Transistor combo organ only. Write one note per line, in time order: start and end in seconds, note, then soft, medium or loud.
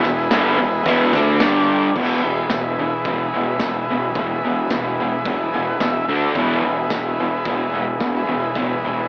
0.00 1.39 E4 medium
0.00 1.38 G#4 medium
0.00 1.38 B4 medium
1.41 1.97 D4 medium
1.41 1.97 G4 medium
1.41 1.96 D5 medium
1.99 6.06 E4 medium
1.99 6.06 G#4 medium
1.99 6.06 B4 medium
5.52 5.66 G#5 medium
5.65 5.79 F#5 medium
5.80 6.32 E5 medium
6.35 9.08 E4 medium
6.35 9.08 G#4 medium
6.35 9.08 B4 medium